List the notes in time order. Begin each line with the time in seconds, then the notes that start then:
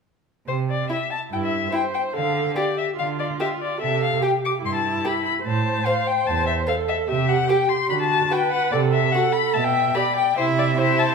0.47 C3 C5
0.70 D5
0.89 E4 E5
1.11 A5
1.31 G2 E4 G5
1.44 E5
1.72 E4 C5 G5
1.94 G5
2.13 D3 A4 F5
2.56 G4 D5
2.78 E5
2.97 D3 F4 F5
3.19 D5
3.40 G4 E5
3.62 D5
3.80 C3 A4 E5
4.03 F5
4.21 G4 G5
4.45 D6
4.63 G2 E4 C6
4.75 A5
5.05 G4 B5
5.25 B5
5.45 A2 C5 A5
5.86 C5 F5
6.07 G5
6.26 E2 A5
6.47 E5
6.67 A4 C5 F5
6.88 E5
7.08 C3 G4 E5
7.29 F#5
7.49 G4 G5
7.69 C6
7.89 D3 F#4 B5
8.00 A5
8.31 F#4 B4 G5
8.52 F#5
8.72 C3 A4 D5
8.93 E5
9.12 F#4 A4 F#5
9.33 B5
9.53 B2 E5 A5
9.64 G5
9.94 G4 D5 B5
10.16 G5
10.37 C3 E4 C5 E5
10.58 D5
10.77 E4 C5 E5
10.99 A5